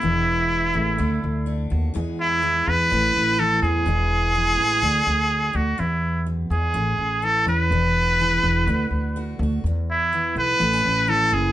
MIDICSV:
0, 0, Header, 1, 5, 480
1, 0, Start_track
1, 0, Tempo, 480384
1, 33, Time_signature, 4, 2, 24, 8
1, 11512, End_track
2, 0, Start_track
2, 0, Title_t, "Muted trumpet"
2, 0, Program_c, 0, 59
2, 0, Note_on_c, 0, 64, 92
2, 1713, Note_off_c, 0, 64, 0
2, 2202, Note_on_c, 0, 64, 101
2, 2681, Note_on_c, 0, 71, 113
2, 2696, Note_off_c, 0, 64, 0
2, 3389, Note_on_c, 0, 69, 99
2, 3404, Note_off_c, 0, 71, 0
2, 3616, Note_off_c, 0, 69, 0
2, 3622, Note_on_c, 0, 68, 110
2, 5554, Note_on_c, 0, 66, 80
2, 5569, Note_off_c, 0, 68, 0
2, 5789, Note_on_c, 0, 64, 75
2, 5804, Note_off_c, 0, 66, 0
2, 6240, Note_off_c, 0, 64, 0
2, 6513, Note_on_c, 0, 68, 90
2, 7232, Note_on_c, 0, 69, 96
2, 7247, Note_off_c, 0, 68, 0
2, 7469, Note_off_c, 0, 69, 0
2, 7475, Note_on_c, 0, 71, 111
2, 9354, Note_off_c, 0, 71, 0
2, 9897, Note_on_c, 0, 64, 93
2, 10332, Note_off_c, 0, 64, 0
2, 10367, Note_on_c, 0, 71, 104
2, 11079, Note_on_c, 0, 69, 102
2, 11094, Note_off_c, 0, 71, 0
2, 11324, Note_on_c, 0, 68, 107
2, 11339, Note_off_c, 0, 69, 0
2, 11512, Note_off_c, 0, 68, 0
2, 11512, End_track
3, 0, Start_track
3, 0, Title_t, "Steel-string acoustic guitar"
3, 0, Program_c, 1, 25
3, 0, Note_on_c, 1, 64, 64
3, 14, Note_on_c, 1, 40, 71
3, 26, Note_on_c, 1, 52, 67
3, 32, Note_on_c, 1, 56, 63
3, 42, Note_on_c, 1, 59, 58
3, 735, Note_on_c, 1, 49, 58
3, 961, Note_off_c, 1, 52, 0
3, 964, Note_off_c, 1, 56, 0
3, 982, Note_off_c, 1, 40, 0
3, 982, Note_on_c, 1, 50, 74
3, 983, Note_off_c, 1, 49, 0
3, 984, Note_off_c, 1, 59, 0
3, 988, Note_on_c, 1, 57, 51
3, 988, Note_on_c, 1, 62, 62
3, 1447, Note_off_c, 1, 57, 0
3, 1456, Note_off_c, 1, 62, 0
3, 1459, Note_on_c, 1, 57, 62
3, 1468, Note_on_c, 1, 62, 61
3, 1696, Note_off_c, 1, 64, 0
3, 1700, Note_on_c, 1, 66, 69
3, 1917, Note_off_c, 1, 57, 0
3, 1918, Note_off_c, 1, 66, 0
3, 1922, Note_off_c, 1, 62, 0
3, 1935, Note_on_c, 1, 40, 66
3, 1940, Note_off_c, 1, 50, 0
3, 1944, Note_on_c, 1, 52, 51
3, 1947, Note_on_c, 1, 56, 67
3, 1953, Note_on_c, 1, 59, 56
3, 1962, Note_on_c, 1, 68, 72
3, 2409, Note_off_c, 1, 52, 0
3, 2416, Note_off_c, 1, 59, 0
3, 2421, Note_on_c, 1, 52, 61
3, 2428, Note_on_c, 1, 59, 63
3, 2668, Note_off_c, 1, 59, 0
3, 2877, Note_off_c, 1, 52, 0
3, 2881, Note_off_c, 1, 56, 0
3, 2888, Note_off_c, 1, 68, 0
3, 2900, Note_on_c, 1, 45, 69
3, 2902, Note_off_c, 1, 40, 0
3, 2909, Note_on_c, 1, 52, 59
3, 2920, Note_on_c, 1, 57, 59
3, 2924, Note_on_c, 1, 61, 62
3, 2932, Note_on_c, 1, 64, 67
3, 3373, Note_off_c, 1, 52, 0
3, 3380, Note_off_c, 1, 64, 0
3, 3385, Note_on_c, 1, 52, 62
3, 3392, Note_on_c, 1, 64, 62
3, 3625, Note_off_c, 1, 61, 0
3, 3637, Note_on_c, 1, 61, 59
3, 3839, Note_off_c, 1, 52, 0
3, 3845, Note_off_c, 1, 61, 0
3, 3846, Note_off_c, 1, 57, 0
3, 3854, Note_on_c, 1, 40, 72
3, 3863, Note_off_c, 1, 45, 0
3, 3868, Note_on_c, 1, 52, 60
3, 3874, Note_on_c, 1, 56, 64
3, 3884, Note_on_c, 1, 59, 50
3, 4331, Note_off_c, 1, 52, 0
3, 4340, Note_off_c, 1, 59, 0
3, 4343, Note_on_c, 1, 52, 61
3, 4352, Note_on_c, 1, 59, 57
3, 4582, Note_off_c, 1, 59, 0
3, 4594, Note_on_c, 1, 59, 58
3, 4798, Note_off_c, 1, 52, 0
3, 4805, Note_off_c, 1, 56, 0
3, 4820, Note_off_c, 1, 40, 0
3, 4827, Note_on_c, 1, 50, 71
3, 4829, Note_off_c, 1, 64, 0
3, 4831, Note_off_c, 1, 59, 0
3, 4833, Note_on_c, 1, 66, 62
3, 5515, Note_off_c, 1, 50, 0
3, 5527, Note_on_c, 1, 50, 61
3, 5763, Note_off_c, 1, 66, 0
3, 5777, Note_off_c, 1, 50, 0
3, 5782, Note_on_c, 1, 59, 50
3, 6259, Note_on_c, 1, 42, 62
3, 6504, Note_off_c, 1, 42, 0
3, 6508, Note_on_c, 1, 44, 60
3, 6743, Note_off_c, 1, 59, 0
3, 6747, Note_on_c, 1, 61, 57
3, 6748, Note_off_c, 1, 44, 0
3, 7216, Note_on_c, 1, 52, 60
3, 7225, Note_on_c, 1, 64, 64
3, 7463, Note_off_c, 1, 61, 0
3, 7475, Note_on_c, 1, 61, 59
3, 7676, Note_off_c, 1, 52, 0
3, 7685, Note_off_c, 1, 61, 0
3, 7714, Note_on_c, 1, 40, 72
3, 7719, Note_on_c, 1, 59, 55
3, 8188, Note_off_c, 1, 64, 0
3, 8188, Note_on_c, 1, 52, 66
3, 8203, Note_on_c, 1, 68, 68
3, 8433, Note_off_c, 1, 59, 0
3, 8447, Note_on_c, 1, 59, 56
3, 8642, Note_off_c, 1, 52, 0
3, 8650, Note_off_c, 1, 68, 0
3, 8668, Note_on_c, 1, 50, 72
3, 8674, Note_off_c, 1, 40, 0
3, 8678, Note_off_c, 1, 59, 0
3, 8682, Note_on_c, 1, 66, 68
3, 9149, Note_off_c, 1, 66, 0
3, 9153, Note_on_c, 1, 57, 60
3, 9161, Note_on_c, 1, 66, 70
3, 9396, Note_off_c, 1, 66, 0
3, 9422, Note_on_c, 1, 66, 67
3, 9605, Note_off_c, 1, 57, 0
3, 9620, Note_off_c, 1, 66, 0
3, 9630, Note_off_c, 1, 50, 0
3, 9653, Note_on_c, 1, 40, 72
3, 10118, Note_on_c, 1, 52, 63
3, 10130, Note_on_c, 1, 59, 58
3, 10343, Note_off_c, 1, 59, 0
3, 10355, Note_on_c, 1, 59, 57
3, 10568, Note_off_c, 1, 52, 0
3, 10588, Note_off_c, 1, 59, 0
3, 10599, Note_on_c, 1, 45, 71
3, 10603, Note_off_c, 1, 40, 0
3, 10604, Note_on_c, 1, 59, 52
3, 10722, Note_off_c, 1, 59, 0
3, 10722, Note_on_c, 1, 61, 47
3, 11065, Note_on_c, 1, 52, 62
3, 11071, Note_on_c, 1, 64, 62
3, 11284, Note_off_c, 1, 61, 0
3, 11512, Note_off_c, 1, 45, 0
3, 11512, Note_off_c, 1, 52, 0
3, 11512, Note_off_c, 1, 64, 0
3, 11512, End_track
4, 0, Start_track
4, 0, Title_t, "Upright bass"
4, 0, Program_c, 2, 32
4, 31, Note_on_c, 2, 28, 92
4, 711, Note_off_c, 2, 28, 0
4, 750, Note_on_c, 2, 33, 91
4, 972, Note_off_c, 2, 33, 0
4, 993, Note_on_c, 2, 38, 98
4, 1214, Note_off_c, 2, 38, 0
4, 1235, Note_on_c, 2, 38, 83
4, 1676, Note_off_c, 2, 38, 0
4, 1714, Note_on_c, 2, 39, 88
4, 1934, Note_off_c, 2, 39, 0
4, 1953, Note_on_c, 2, 40, 95
4, 2631, Note_off_c, 2, 40, 0
4, 2670, Note_on_c, 2, 40, 86
4, 2891, Note_off_c, 2, 40, 0
4, 2913, Note_on_c, 2, 33, 96
4, 3133, Note_off_c, 2, 33, 0
4, 3156, Note_on_c, 2, 33, 85
4, 3596, Note_off_c, 2, 33, 0
4, 3620, Note_on_c, 2, 40, 91
4, 3845, Note_off_c, 2, 40, 0
4, 3857, Note_on_c, 2, 28, 98
4, 4542, Note_off_c, 2, 28, 0
4, 4571, Note_on_c, 2, 33, 84
4, 4801, Note_off_c, 2, 33, 0
4, 4816, Note_on_c, 2, 38, 92
4, 5043, Note_off_c, 2, 38, 0
4, 5061, Note_on_c, 2, 38, 86
4, 5508, Note_off_c, 2, 38, 0
4, 5539, Note_on_c, 2, 38, 86
4, 5765, Note_off_c, 2, 38, 0
4, 5784, Note_on_c, 2, 40, 98
4, 6466, Note_off_c, 2, 40, 0
4, 6497, Note_on_c, 2, 40, 89
4, 6724, Note_off_c, 2, 40, 0
4, 6741, Note_on_c, 2, 33, 90
4, 6966, Note_off_c, 2, 33, 0
4, 6975, Note_on_c, 2, 33, 80
4, 7425, Note_off_c, 2, 33, 0
4, 7457, Note_on_c, 2, 40, 93
4, 7685, Note_off_c, 2, 40, 0
4, 7701, Note_on_c, 2, 28, 97
4, 8386, Note_off_c, 2, 28, 0
4, 8426, Note_on_c, 2, 28, 93
4, 8650, Note_off_c, 2, 28, 0
4, 8661, Note_on_c, 2, 38, 100
4, 8887, Note_off_c, 2, 38, 0
4, 8898, Note_on_c, 2, 38, 84
4, 9348, Note_off_c, 2, 38, 0
4, 9383, Note_on_c, 2, 38, 99
4, 9609, Note_off_c, 2, 38, 0
4, 9630, Note_on_c, 2, 40, 88
4, 10311, Note_off_c, 2, 40, 0
4, 10345, Note_on_c, 2, 35, 88
4, 10570, Note_off_c, 2, 35, 0
4, 10590, Note_on_c, 2, 33, 100
4, 10813, Note_off_c, 2, 33, 0
4, 10840, Note_on_c, 2, 33, 89
4, 11280, Note_off_c, 2, 33, 0
4, 11310, Note_on_c, 2, 30, 94
4, 11512, Note_off_c, 2, 30, 0
4, 11512, End_track
5, 0, Start_track
5, 0, Title_t, "Muted steel-string acoustic guitar strokes"
5, 5773, Note_on_c, 9, 29, 74
5, 5873, Note_off_c, 9, 29, 0
5, 6734, Note_on_c, 9, 29, 73
5, 6834, Note_off_c, 9, 29, 0
5, 9658, Note_on_c, 9, 29, 63
5, 9758, Note_off_c, 9, 29, 0
5, 11296, Note_on_c, 9, 29, 62
5, 11396, Note_off_c, 9, 29, 0
5, 11512, End_track
0, 0, End_of_file